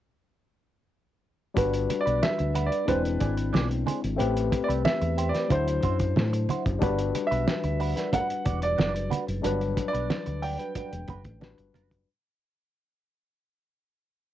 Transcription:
1.54 G1 G3 D4 F#4 B4, kick, closed hi-hat, muted conga
1.59 B4
1.73 closed hi-hat
1.89 muted clean electric guitar stroke, closed hi-hat, muted conga
2.01 D5
2.06 B1 D4 F#4 B4, closed hi-hat
2.23 E5, snare, high conga
2.38 D2, muted clean electric guitar stroke, closed hi-hat
2.54 D4 F#4 B4, closed hi-hat, muted conga
2.66 D5
2.71 D4 F#4 B4, closed hi-hat
2.85 E1 G#3 D4 E4 G#4 B4 C5, kick, closed hi-hat, muted conga, low conga
2.90 C4
3.05 closed hi-hat
3.20 G#1 D4 G#4 D5, kick, closed hi-hat
3.37 muted clean electric guitar stroke, closed hi-hat
3.53 B1 D4 G#4 D5, snare, high conga
3.71 closed hi-hat
3.86 D4 G#4 C5, closed hi-hat, high conga
4.04 G#1, closed hi-hat
4.16 A3 C4 G4 B4, closed hi-hat, muted conga
4.20 A1 B4
4.37 closed hi-hat
4.51 muted clean electric guitar stroke, kick, closed hi-hat, muted conga
4.64 D5
4.68 C2 C4 G4 B4, closed hi-hat
4.85 E5, muted clean electric guitar stroke, muted fingered electric bass stroke, snare, high conga
5.01 E2, muted clean electric guitar stroke, closed hi-hat
5.18 C4 G4 C5, closed hi-hat
5.29 D5
5.34 C4 G4 B4, snare, closed hi-hat
5.48 D2 F#3 D4 E4 F#4 C5, kick, closed hi-hat, muted conga
5.52 C5
5.67 muted clean electric guitar stroke, closed hi-hat
5.83 F#2 E4 F#4 C5, kick, closed hi-hat
6.00 kick, closed hi-hat
6.16 A2, muted clean electric guitar stroke, snare, high conga
6.33 muted clean electric guitar stroke, closed hi-hat
6.49 E4 F#4 C5, closed hi-hat, high conga
6.66 F#1, kick, closed hi-hat
6.79 G1 G3 D4 F#4 B4, kick, closed hi-hat, muted conga
6.83 B4
6.99 closed hi-hat
7.15 muted clean electric guitar stroke, closed hi-hat, muted conga
7.27 E5
7.31 B1 D4 F#4 B4, closed hi-hat
7.48 snare, high conga
7.64 D2, muted clean electric guitar stroke, closed hi-hat
7.80 D4 F#4 B4, open hi-hat
7.96 D4 F#4 B4, snare, closed hi-hat
8.12 D4 F#4 B4 F#5, kick, closed hi-hat, muted conga, low conga
8.29 muted clean electric guitar stroke, closed hi-hat
8.45 E1 D4 F#4 D5, kick, closed hi-hat
8.62 D5, muted clean electric guitar stroke, closed hi-hat
8.78 F#1 D4 F#4 D5, snare, high conga
8.95 muted clean electric guitar stroke, closed hi-hat
9.10 D4 F#4 B4, closed hi-hat, high conga
9.27 F#1, muted clean electric guitar stroke, closed hi-hat
9.42 G1 F#3 G3 D4 F#4 B4, closed hi-hat, muted conga
9.46 B4
9.61 closed hi-hat
9.77 muted clean electric guitar stroke, kick, closed hi-hat, muted conga
9.88 D5
9.93 B1 D4 F#4 B4, closed hi-hat
10.10 muted fingered electric bass stroke, snare, high conga
10.26 D2, muted clean electric guitar stroke, closed hi-hat
10.42 D4 F#4 D5 G5, open hi-hat, muted conga
10.59 D4 F#4 B4, closed hi-hat
10.75 D4 F#4 B4, kick, closed hi-hat, muted conga
10.92 E1, muted clean electric guitar stroke, closed hi-hat
11.08 F#1 D4 F#4 B4, kick, closed hi-hat, low conga
11.24 A1, muted clean electric guitar stroke, kick, closed hi-hat
11.40 G3 D4 F#4 B4, muted clean electric guitar stroke, snare, high conga
11.58 G1, muted clean electric guitar stroke, closed hi-hat
11.74 F#1 D4 F#4 B4, closed hi-hat, high conga
11.91 kick, closed hi-hat

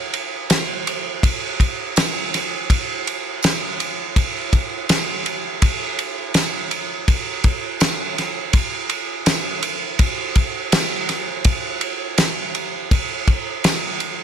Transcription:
0.14 ride
0.50 snare, ride, tambourine
0.87 ride
1.23 kick, ride
1.60 kick, ride
1.96 snare, ride, tambourine
2.34 snare, ride
2.70 kick, ride
3.07 ride
3.43 snare, ride, tambourine
3.80 ride
4.16 kick, ride
4.53 kick, ride
4.89 snare, ride, tambourine
5.26 ride
5.62 kick, ride
5.99 ride
6.34 snare, ride, tambourine
6.71 ride
7.08 kick, ride
7.44 kick, ride
7.80 snare, ride, tambourine
8.18 snare, ride
8.53 kick, ride
8.90 ride
9.26 snare, ride, tambourine
9.63 ride
9.99 kick, ride
10.36 kick, ride
10.72 snare, ride, tambourine
11.09 snare, ride
11.45 kick, ride
11.81 ride
12.18 snare, ride, tambourine
12.55 ride
12.91 kick, ride
13.28 kick, ride
13.64 snare, ride, tambourine
14.00 ride

